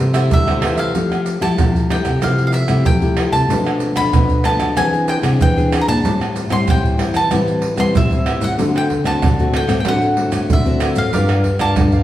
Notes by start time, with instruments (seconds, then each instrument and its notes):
Already playing: nylon-string guitar F3
0.00 nylon-string guitar C3
0.13 nylon-string guitar A3 E4 G4, cavaquinho A4 C5 E5, pandeiro, tamborim, maracas
0.30 nylon-string guitar C3 D3, mandolin E5, pandeiro, maracas, surdo
0.47 nylon-string guitar A3 E4 G4, cavaquinho A4 C5 E5, pandeiro, tamborim, maracas
0.61 nylon-string guitar E3, cavaquinho F4 A4 C5 E5, pandeiro, tamborim
0.76 cavaquinho A4 C5 E5, mandolin F5, pandeiro, maracas
0.94 nylon-string guitar F3 A3 G4, pandeiro, maracas, surdo
1.12 pandeiro, tamborim, maracas
1.26 pandeiro, maracas
1.41 nylon-string guitar F3 A3 E4 G4, mandolin A5, pandeiro, tamborim, maracas, surdo
1.58 nylon-string guitar C3 F3, pandeiro, tamborim, maracas, surdo
1.76 pandeiro, maracas
1.89 nylon-string guitar A3 E4 G4, mandolin G5, pandeiro, tamborim
2.05 nylon-string guitar C3, pandeiro, tamborim, maracas, surdo
2.22 nylon-string guitar C3 F3 A3 E4 G4, mandolin F5, pandeiro, tamborim, maracas, surdo
2.38 pandeiro, maracas
2.47 mandolin F5
2.52 mandolin E5, pandeiro, maracas
2.68 nylon-string guitar C3 A3 E4 G4, pandeiro, tamborim, maracas, surdo
2.85 nylon-string guitar C3 F3, mandolin G5, pandeiro, maracas, surdo
3.01 nylon-string guitar A3 E4 G4, pandeiro, maracas
3.17 pandeiro, tamborim
3.32 nylon-string guitar C3, mandolin A5, pandeiro, maracas, surdo
3.49 nylon-string guitar B2 F3 A3 D4, pandeiro, maracas, surdo
3.67 pandeiro, tamborim, maracas
3.80 pandeiro, maracas
3.96 nylon-string guitar B2 F3 A3 D4, mandolin B5, pandeiro, tamborim, maracas, surdo
4.13 nylon-string guitar B2, pandeiro, tamborim, maracas, surdo
4.29 pandeiro, maracas
4.44 nylon-string guitar F3 A3 D4, mandolin A5, pandeiro, tamborim, maracas
4.59 nylon-string guitar B2, pandeiro, tamborim, maracas, surdo
4.76 nylon-string guitar E3 C4 D4 G#4, mandolin G#5, pandeiro, tamborim, maracas, surdo
4.93 pandeiro, maracas
5.08 mandolin G5, pandeiro, maracas
5.22 nylon-string guitar C3 C4 D4 G#4, pandeiro, tamborim, maracas, surdo
5.39 nylon-string guitar E3, mandolin G5, pandeiro, maracas, surdo
5.57 nylon-string guitar C4 D4 G#4, pandeiro, maracas
5.72 pandeiro, tamborim, maracas
5.81 mandolin A#5
5.88 nylon-string guitar A#2, mandolin A5, pandeiro, maracas, surdo
6.04 nylon-string guitar A2 G3 C4 E4, pandeiro, maracas, surdo
6.21 pandeiro, tamborim, maracas
6.36 pandeiro, maracas
6.49 nylon-string guitar A2 G3 C4 E4, mandolin C6, pandeiro, tamborim, maracas, surdo
6.66 nylon-string guitar A2 E3, pandeiro, tamborim, maracas, surdo
6.70 mandolin G5
6.85 pandeiro, maracas
6.97 nylon-string guitar G3 C4 E4, pandeiro, tamborim
7.14 nylon-string guitar E3, mandolin A5, pandeiro, tamborim, maracas, surdo
7.30 nylon-string guitar A2 E3 G3 C4 E4, pandeiro, tamborim, maracas, surdo
7.48 pandeiro, maracas
7.62 pandeiro
7.76 nylon-string guitar E3 G3 C4 E4, mandolin C6, pandeiro, tamborim, maracas, surdo
7.93 nylon-string guitar A2 E3, mandolin E5, pandeiro, maracas, surdo
8.10 nylon-string guitar G3 C4 E4, pandeiro, maracas
8.26 pandeiro, tamborim
8.41 nylon-string guitar A2, mandolin F#5, pandeiro, maracas, surdo
8.57 nylon-string guitar D3 A3 C4 F#4, pandeiro, maracas, surdo
8.76 mandolin G5, pandeiro, tamborim, maracas
8.90 pandeiro, surdo
9.04 nylon-string guitar D3 A3 C4 F#4, mandolin A5, pandeiro, tamborim, maracas, surdo
9.22 nylon-string guitar A2 D3, pandeiro, tamborim, maracas, surdo
9.39 nylon-string guitar A3 C4 F#4, pandeiro, maracas
9.54 mandolin G5, pandeiro, tamborim
9.68 nylon-string guitar A2 A3 C4 F#4, pandeiro, tamborim, maracas, surdo
9.80 mandolin G5
9.85 nylon-string guitar A2 D3 A3 C4 F#4, mandolin F#5, pandeiro, tamborim, maracas, surdo
10.02 pandeiro, maracas
10.17 nylon-string guitar A3 C4 F#4, pandeiro
10.32 nylon-string guitar A2, pandeiro, tamborim, maracas, surdo
10.49 nylon-string guitar A2 D3, mandolin E5, pandeiro, maracas, surdo
10.65 nylon-string guitar A3 C4 F#4, pandeiro, maracas
10.80 pandeiro, tamborim, maracas
10.96 nylon-string guitar A2, mandolin F5, pandeiro, maracas, surdo
11.13 nylon-string guitar G2 G3 D4 F4 A#4, cavaquinho G4 A#4 D5 F5, pandeiro, maracas, surdo
11.29 cavaquinho A#4 D5 F5, pandeiro, tamborim, maracas
11.44 muted cavaquinho stroke, pandeiro, surdo
11.59 nylon-string guitar G2 D4 F4 A#4, cavaquinho A#4 D5 F5, mandolin A5, pandeiro, tamborim, maracas, surdo
11.76 nylon-string guitar G2 D3, pandeiro, tamborim, maracas, surdo
11.92 cavaquinho A#4 D5 F5, pandeiro, maracas